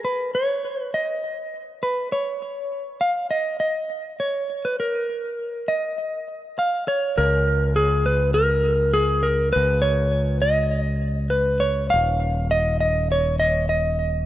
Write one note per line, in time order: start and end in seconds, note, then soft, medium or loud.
0.05 0.34 B4 soft
0.35 0.82 C#5 soft
0.82 0.94 B4 soft
0.94 1.82 D#5 medium
1.83 2.12 B4 soft
2.12 2.98 C#5 medium
3.01 3.30 F5 medium
3.31 3.59 D#5 medium
3.60 4.16 D#5 medium
4.20 4.67 C#5 medium
4.65 4.79 B4 medium
4.80 5.72 A#4 soft
5.68 6.84 D#5 medium
6.59 6.87 F5 medium
6.88 7.19 C#5 medium
7.18 9.52 C#2 soft
7.18 7.76 A#4 medium
7.76 8.05 G#4 medium
8.06 8.34 B4 medium
8.34 8.91 A#4 medium
8.93 9.26 G#4 medium
9.23 9.52 A#4 medium
9.53 11.90 C#2 soft
9.53 9.82 B4 medium
9.82 10.41 C#5 medium
10.42 11.35 D#5 medium
11.30 11.63 B4 medium
11.60 11.90 C#5 medium
11.90 14.26 D#1 soft
11.90 12.51 F5 medium
12.51 12.79 D#5 medium
12.80 13.11 D#5 medium
13.12 13.39 C#5 medium
13.40 13.68 D#5 medium
13.69 14.26 D#5 medium